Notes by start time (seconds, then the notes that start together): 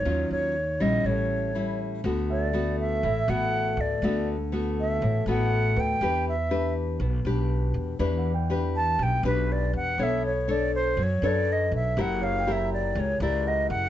Already playing: C#5
0.05 D#2 D#3 F#3 C#4 F4
0.31 D#2 C#5
0.80 A#1 G3 C#4 E4 D#5
1.04 A1 A2 C#5
1.55 G3 C#4 E4
2.04 D2 D3 A3 B3 F#4
2.30 D5 E5
2.53 A3 B3 F#4
2.80 E5
3.03 A1 A2 E5
3.28 A1 A3 B3 F#4 F#5
3.77 D2 D5
4.02 D2 D3 A3 B3 F#4
4.52 A3 B3 F#4
4.80 E5
5.02 A1 A2
5.26 A1 A3 B3 F#4
5.30 F#5
5.76 D2 B4
5.80 G5
6.01 E2 E3 D4 G4 B4
6.29 E5
6.51 D4 G4 B4
7.00 B1 B2
7.25 B1 D4 G4 B4
7.74 E2
7.99 E2 E3 D4 G4 B4 D5
8.17 F#5
8.34 G5
8.50 D4 G4 B4
8.76 A5
8.99 B1 B2 G5
9.23 B1 D4 G4 B4
9.52 D5
9.73 E2 F#5
9.98 B1 B3 D4 A4 C#5
10.03 E5
10.26 C#5
10.48 D4 A4 C#5 D5
10.75 C5
10.97 F#2 F#3
11.03 C#5
11.22 F#2 D4 A4 B4 C#5 D5
11.52 D#5
11.71 B1
11.76 E5
11.97 F#1 F#3 E4 G4 A#4
12.01 F#5
12.22 C#5 F5
12.39 G5
12.47 E4 G4 A#4
12.52 E5
12.56 A#5
12.73 D5
12.95 C#2 C#3
13.00 C#5
13.20 C#2 E4 G4 A#4 D5
13.46 D#5 F#5
13.70 F#1 F#5